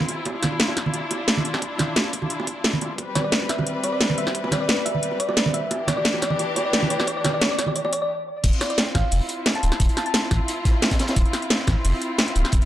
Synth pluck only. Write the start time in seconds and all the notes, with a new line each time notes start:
3.15 D5
3.24 D5
3.50 E5
3.84 D5
3.93 D5
4.18 E5
4.52 D5
4.61 D5
4.85 E5
5.20 D5
5.29 D5
5.54 E5
5.88 D5
5.97 D5
6.22 D5
6.31 D5
6.56 D5
6.65 D5
6.90 D5
6.99 D5
7.08 D5
7.17 D5
7.25 D5
7.34 D5
7.42 D5
7.51 D5
7.59 D5
7.68 D5
7.76 D5
7.85 D5
7.93 D5
8.02 D5
8.61 D5
8.70 D5
8.95 F5
9.56 A5
9.97 A5
10.06 A5